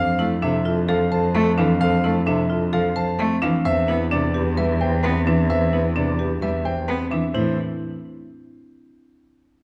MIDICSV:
0, 0, Header, 1, 6, 480
1, 0, Start_track
1, 0, Key_signature, 0, "minor"
1, 0, Tempo, 461538
1, 1879, Time_signature, 4, 2, 24, 8
1, 10015, End_track
2, 0, Start_track
2, 0, Title_t, "Grand piano"
2, 0, Program_c, 0, 0
2, 0, Note_on_c, 0, 77, 119
2, 269, Note_off_c, 0, 77, 0
2, 440, Note_on_c, 0, 76, 99
2, 751, Note_off_c, 0, 76, 0
2, 923, Note_on_c, 0, 77, 99
2, 1159, Note_on_c, 0, 81, 85
2, 1232, Note_off_c, 0, 77, 0
2, 1471, Note_off_c, 0, 81, 0
2, 1637, Note_on_c, 0, 77, 86
2, 1864, Note_off_c, 0, 77, 0
2, 1879, Note_on_c, 0, 77, 127
2, 2191, Note_off_c, 0, 77, 0
2, 2353, Note_on_c, 0, 76, 96
2, 2669, Note_off_c, 0, 76, 0
2, 2840, Note_on_c, 0, 77, 96
2, 3080, Note_on_c, 0, 81, 90
2, 3151, Note_off_c, 0, 77, 0
2, 3391, Note_off_c, 0, 81, 0
2, 3557, Note_on_c, 0, 77, 87
2, 3799, Note_on_c, 0, 76, 124
2, 3870, Note_off_c, 0, 77, 0
2, 4111, Note_off_c, 0, 76, 0
2, 4281, Note_on_c, 0, 74, 95
2, 4592, Note_off_c, 0, 74, 0
2, 4761, Note_on_c, 0, 76, 90
2, 5003, Note_on_c, 0, 79, 89
2, 5072, Note_off_c, 0, 76, 0
2, 5312, Note_off_c, 0, 79, 0
2, 5479, Note_on_c, 0, 76, 83
2, 5701, Note_off_c, 0, 76, 0
2, 5717, Note_on_c, 0, 76, 111
2, 6030, Note_off_c, 0, 76, 0
2, 6203, Note_on_c, 0, 74, 80
2, 6512, Note_off_c, 0, 74, 0
2, 6681, Note_on_c, 0, 76, 90
2, 6918, Note_on_c, 0, 79, 86
2, 6992, Note_off_c, 0, 76, 0
2, 7230, Note_off_c, 0, 79, 0
2, 7391, Note_on_c, 0, 76, 72
2, 7635, Note_on_c, 0, 72, 95
2, 7708, Note_off_c, 0, 76, 0
2, 7860, Note_off_c, 0, 72, 0
2, 10015, End_track
3, 0, Start_track
3, 0, Title_t, "French horn"
3, 0, Program_c, 1, 60
3, 0, Note_on_c, 1, 69, 52
3, 124, Note_off_c, 1, 69, 0
3, 198, Note_on_c, 1, 69, 65
3, 366, Note_off_c, 1, 69, 0
3, 441, Note_on_c, 1, 69, 80
3, 608, Note_off_c, 1, 69, 0
3, 680, Note_on_c, 1, 69, 95
3, 847, Note_off_c, 1, 69, 0
3, 918, Note_on_c, 1, 69, 97
3, 1086, Note_off_c, 1, 69, 0
3, 1155, Note_on_c, 1, 69, 96
3, 1324, Note_off_c, 1, 69, 0
3, 1397, Note_on_c, 1, 69, 119
3, 1565, Note_off_c, 1, 69, 0
3, 1638, Note_on_c, 1, 69, 101
3, 1806, Note_off_c, 1, 69, 0
3, 1878, Note_on_c, 1, 69, 109
3, 2046, Note_off_c, 1, 69, 0
3, 2119, Note_on_c, 1, 69, 105
3, 2287, Note_off_c, 1, 69, 0
3, 2361, Note_on_c, 1, 69, 96
3, 2528, Note_off_c, 1, 69, 0
3, 2596, Note_on_c, 1, 69, 94
3, 2765, Note_off_c, 1, 69, 0
3, 2839, Note_on_c, 1, 69, 78
3, 3007, Note_off_c, 1, 69, 0
3, 3074, Note_on_c, 1, 69, 68
3, 3244, Note_off_c, 1, 69, 0
3, 3324, Note_on_c, 1, 69, 56
3, 3490, Note_off_c, 1, 69, 0
3, 3802, Note_on_c, 1, 71, 55
3, 3969, Note_off_c, 1, 71, 0
3, 4038, Note_on_c, 1, 71, 70
3, 4206, Note_off_c, 1, 71, 0
3, 4281, Note_on_c, 1, 71, 74
3, 4448, Note_off_c, 1, 71, 0
3, 4523, Note_on_c, 1, 71, 91
3, 4689, Note_off_c, 1, 71, 0
3, 4760, Note_on_c, 1, 71, 93
3, 4928, Note_off_c, 1, 71, 0
3, 5001, Note_on_c, 1, 71, 97
3, 5169, Note_off_c, 1, 71, 0
3, 5242, Note_on_c, 1, 71, 96
3, 5409, Note_off_c, 1, 71, 0
3, 5479, Note_on_c, 1, 71, 84
3, 5647, Note_off_c, 1, 71, 0
3, 5723, Note_on_c, 1, 71, 95
3, 5890, Note_off_c, 1, 71, 0
3, 5962, Note_on_c, 1, 71, 92
3, 6129, Note_off_c, 1, 71, 0
3, 6196, Note_on_c, 1, 71, 83
3, 6365, Note_off_c, 1, 71, 0
3, 6441, Note_on_c, 1, 71, 81
3, 6608, Note_off_c, 1, 71, 0
3, 6684, Note_on_c, 1, 71, 63
3, 6850, Note_off_c, 1, 71, 0
3, 6925, Note_on_c, 1, 71, 55
3, 7091, Note_off_c, 1, 71, 0
3, 7163, Note_on_c, 1, 71, 49
3, 7330, Note_off_c, 1, 71, 0
3, 10015, End_track
4, 0, Start_track
4, 0, Title_t, "Marimba"
4, 0, Program_c, 2, 12
4, 0, Note_on_c, 2, 72, 99
4, 197, Note_on_c, 2, 64, 94
4, 271, Note_off_c, 2, 72, 0
4, 439, Note_on_c, 2, 62, 105
4, 510, Note_off_c, 2, 64, 0
4, 679, Note_on_c, 2, 65, 92
4, 751, Note_off_c, 2, 62, 0
4, 921, Note_on_c, 2, 69, 110
4, 991, Note_off_c, 2, 65, 0
4, 1163, Note_on_c, 2, 72, 95
4, 1232, Note_off_c, 2, 69, 0
4, 1402, Note_on_c, 2, 60, 90
4, 1472, Note_off_c, 2, 72, 0
4, 1642, Note_on_c, 2, 62, 117
4, 1712, Note_off_c, 2, 60, 0
4, 1881, Note_on_c, 2, 72, 103
4, 1952, Note_off_c, 2, 62, 0
4, 2122, Note_on_c, 2, 64, 85
4, 2192, Note_off_c, 2, 72, 0
4, 2359, Note_on_c, 2, 62, 116
4, 2432, Note_off_c, 2, 64, 0
4, 2597, Note_on_c, 2, 65, 88
4, 2671, Note_off_c, 2, 62, 0
4, 2839, Note_on_c, 2, 69, 109
4, 2910, Note_off_c, 2, 65, 0
4, 3077, Note_on_c, 2, 72, 99
4, 3151, Note_off_c, 2, 69, 0
4, 3315, Note_on_c, 2, 60, 90
4, 3390, Note_off_c, 2, 72, 0
4, 3556, Note_on_c, 2, 62, 119
4, 3630, Note_off_c, 2, 60, 0
4, 3799, Note_on_c, 2, 72, 102
4, 3870, Note_off_c, 2, 62, 0
4, 4038, Note_on_c, 2, 64, 85
4, 4111, Note_off_c, 2, 72, 0
4, 4278, Note_on_c, 2, 62, 115
4, 4351, Note_off_c, 2, 64, 0
4, 4518, Note_on_c, 2, 67, 87
4, 4590, Note_off_c, 2, 62, 0
4, 4757, Note_on_c, 2, 71, 109
4, 4830, Note_off_c, 2, 67, 0
4, 5001, Note_on_c, 2, 72, 86
4, 5070, Note_off_c, 2, 71, 0
4, 5241, Note_on_c, 2, 60, 83
4, 5312, Note_off_c, 2, 72, 0
4, 5481, Note_on_c, 2, 62, 102
4, 5552, Note_off_c, 2, 60, 0
4, 5721, Note_on_c, 2, 72, 84
4, 5792, Note_off_c, 2, 62, 0
4, 5961, Note_on_c, 2, 64, 76
4, 6032, Note_off_c, 2, 72, 0
4, 6197, Note_on_c, 2, 62, 105
4, 6272, Note_off_c, 2, 64, 0
4, 6438, Note_on_c, 2, 67, 85
4, 6510, Note_off_c, 2, 62, 0
4, 6680, Note_on_c, 2, 71, 101
4, 6750, Note_off_c, 2, 67, 0
4, 6920, Note_on_c, 2, 72, 79
4, 6991, Note_off_c, 2, 71, 0
4, 7158, Note_on_c, 2, 60, 76
4, 7231, Note_off_c, 2, 72, 0
4, 7398, Note_on_c, 2, 62, 104
4, 7470, Note_off_c, 2, 60, 0
4, 7640, Note_on_c, 2, 64, 95
4, 7711, Note_off_c, 2, 62, 0
4, 7862, Note_off_c, 2, 64, 0
4, 10015, End_track
5, 0, Start_track
5, 0, Title_t, "Cello"
5, 0, Program_c, 3, 42
5, 201, Note_on_c, 3, 57, 84
5, 380, Note_off_c, 3, 57, 0
5, 438, Note_on_c, 3, 48, 92
5, 619, Note_off_c, 3, 48, 0
5, 919, Note_on_c, 3, 53, 93
5, 1099, Note_off_c, 3, 53, 0
5, 1400, Note_on_c, 3, 57, 121
5, 1579, Note_off_c, 3, 57, 0
5, 1644, Note_on_c, 3, 52, 100
5, 1822, Note_off_c, 3, 52, 0
5, 2120, Note_on_c, 3, 57, 93
5, 2299, Note_off_c, 3, 57, 0
5, 2362, Note_on_c, 3, 48, 89
5, 2541, Note_off_c, 3, 48, 0
5, 2837, Note_on_c, 3, 53, 89
5, 3018, Note_off_c, 3, 53, 0
5, 3317, Note_on_c, 3, 57, 119
5, 3498, Note_off_c, 3, 57, 0
5, 3561, Note_on_c, 3, 52, 104
5, 3740, Note_off_c, 3, 52, 0
5, 4037, Note_on_c, 3, 59, 90
5, 4218, Note_off_c, 3, 59, 0
5, 4278, Note_on_c, 3, 48, 84
5, 4458, Note_off_c, 3, 48, 0
5, 4757, Note_on_c, 3, 55, 77
5, 4938, Note_off_c, 3, 55, 0
5, 5234, Note_on_c, 3, 59, 110
5, 5416, Note_off_c, 3, 59, 0
5, 5475, Note_on_c, 3, 52, 87
5, 5656, Note_off_c, 3, 52, 0
5, 5956, Note_on_c, 3, 59, 73
5, 6137, Note_off_c, 3, 59, 0
5, 6195, Note_on_c, 3, 48, 79
5, 6376, Note_off_c, 3, 48, 0
5, 6672, Note_on_c, 3, 55, 80
5, 6854, Note_off_c, 3, 55, 0
5, 7156, Note_on_c, 3, 59, 99
5, 7337, Note_off_c, 3, 59, 0
5, 7395, Note_on_c, 3, 52, 91
5, 7576, Note_off_c, 3, 52, 0
5, 7634, Note_on_c, 3, 52, 91
5, 7859, Note_off_c, 3, 52, 0
5, 10015, End_track
6, 0, Start_track
6, 0, Title_t, "Cello"
6, 0, Program_c, 4, 42
6, 0, Note_on_c, 4, 41, 102
6, 3660, Note_off_c, 4, 41, 0
6, 3798, Note_on_c, 4, 40, 106
6, 7501, Note_off_c, 4, 40, 0
6, 7638, Note_on_c, 4, 45, 86
6, 7861, Note_off_c, 4, 45, 0
6, 10015, End_track
0, 0, End_of_file